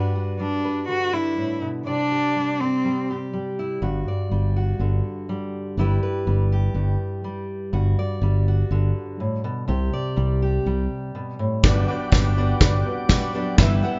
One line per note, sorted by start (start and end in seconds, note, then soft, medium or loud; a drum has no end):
0.00 1.37 G2 medium
0.00 0.39 G3 soft
0.00 1.13 D4 soft
0.00 0.14 F#4 soft
0.00 0.63 B4 soft
0.15 1.84 F#4 soft
0.39 2.34 G3 soft
0.39 0.85 D4 medium
0.65 1.84 B4 soft
0.88 1.87 D3 soft
0.88 1.15 F#4 medium
1.13 1.89 D4 soft
1.13 1.62 E4 medium
1.37 1.61 A2 soft
1.62 1.86 B2 soft
1.86 3.80 C3 medium
1.86 2.62 D4 medium
1.86 2.60 D5 soft
2.12 3.09 G4 soft
2.35 2.83 G3 soft
2.60 3.09 C4 medium
2.60 3.80 D5 medium
2.85 3.32 G3 soft
3.11 3.81 G4 soft
3.33 4.30 G3 soft
3.59 3.80 E4 soft
3.82 4.03 G1 medium
3.82 5.78 G2 medium
3.82 4.55 F#4 soft
4.08 5.76 D5 soft
4.31 4.72 G1 medium
4.31 5.29 G3 soft
4.56 5.76 F#4 soft
4.79 5.00 G1 medium
4.79 5.78 D3 medium
5.29 5.78 G3 soft
5.77 5.98 G1 medium
5.77 6.75 G2 medium
5.77 6.26 G3 medium
5.77 7.71 E4 soft
5.77 6.52 G4 soft
5.77 6.02 B4 medium
6.03 7.71 B4 soft
6.27 6.68 G1 medium
6.27 7.24 G3 medium
6.52 7.73 G4 soft
6.74 6.95 G1 medium
6.74 7.72 G2 medium
7.24 8.22 G3 soft
7.73 7.94 G1 medium
7.73 9.20 G2 medium
7.73 8.47 F#4 medium
7.99 9.71 D5 medium
8.22 8.62 G1 medium
8.22 10.15 G3 medium
8.48 9.67 F#4 soft
8.71 8.91 G1 medium
8.71 9.69 D3 medium
9.20 9.44 A2 medium
9.44 9.67 B2 medium
9.68 9.89 C2 medium
9.68 11.14 C3 medium
9.68 10.41 G4 medium
9.93 11.61 D5 medium
10.16 10.58 C2 medium
10.16 10.65 G3 medium
10.42 11.61 G4 medium
10.66 10.86 C2 medium
10.66 11.61 G3 medium
11.15 11.39 B2 medium
11.39 11.64 A2 medium
11.63 11.84 G1 medium
11.63 13.55 G1 medium
11.63 11.88 G2 medium
11.63 13.55 G2 medium
11.63 11.88 D3 medium
11.63 11.88 F#3 medium
11.63 11.85 G3 medium
11.63 11.88 B3 medium
11.63 11.88 D4 medium
11.63 11.85 F#4 medium
11.63 13.99 B4 medium
11.63 11.85 B4 medium
11.63 11.87 B4 medium
11.63 11.86 D5 loud
11.63 13.57 F#5 medium
11.63 13.57 G5 medium
11.63 13.57 D6 medium
11.63 kick loud
11.63 snare soft
11.88 12.10 F#3 soft
11.88 12.09 G3 medium
11.88 12.12 B3 soft
11.88 12.12 D4 soft
11.88 12.09 F#4 medium
11.88 12.12 B4 soft
11.88 12.09 B4 medium
11.88 12.10 D5 medium
12.12 12.53 G1 medium
12.12 12.36 F#3 medium
12.12 12.34 G3 medium
12.12 12.37 B3 medium
12.12 12.37 D4 medium
12.12 12.34 F#4 medium
12.12 12.34 B4 medium
12.12 12.36 B4 medium
12.12 12.34 D5 medium
12.12 kick medium
12.12 snare soft
12.12 tambourine medium
12.37 12.58 G3 medium
12.37 13.10 B3 soft
12.37 13.11 D4 soft
12.37 12.58 F#4 medium
12.37 12.58 B4 medium
12.37 13.12 B4 medium
12.37 12.58 D5 medium
12.61 12.81 G1 medium
12.61 12.82 G3 medium
12.61 12.82 F#4 medium
12.61 12.83 B4 medium
12.61 12.83 D5 loud
12.61 kick loud
12.61 snare medium
12.85 13.07 G3 medium
12.85 13.07 F#4 medium
12.85 13.07 B4 medium
12.85 13.07 D5 medium
13.09 13.34 F#3 medium
13.09 13.31 G3 medium
13.09 13.34 B3 medium
13.09 13.33 D4 medium
13.09 13.32 F#4 medium
13.09 13.32 B4 medium
13.09 13.32 D5 medium
13.09 kick medium
13.09 snare medium
13.09 tambourine medium
13.33 13.59 F#3 soft
13.33 13.56 G3 medium
13.33 13.58 B3 soft
13.33 13.59 D4 medium
13.33 13.56 F#4 medium
13.33 13.58 B4 medium
13.33 13.56 B4 medium
13.33 13.56 D5 medium
13.58 13.79 G1 medium
13.58 13.99 G1 medium
13.58 13.83 G2 medium
13.58 13.99 G2 medium
13.58 13.83 E3 medium
13.58 13.80 G3 loud
13.58 13.83 G3 medium
13.58 13.83 B3 medium
13.58 13.80 E4 medium
13.58 13.83 E4 medium
13.58 13.81 G4 medium
13.58 13.80 B4 medium
13.58 13.80 E5 loud
13.58 13.99 E5 medium
13.58 13.99 G5 medium
13.58 13.99 E6 medium
13.58 kick medium
13.58 snare medium
13.83 13.99 G3 medium
13.83 13.99 G3 soft
13.83 13.99 B3 soft
13.83 13.99 E4 medium
13.83 13.99 G4 medium
13.83 13.99 B4 medium
13.83 13.99 F#5 medium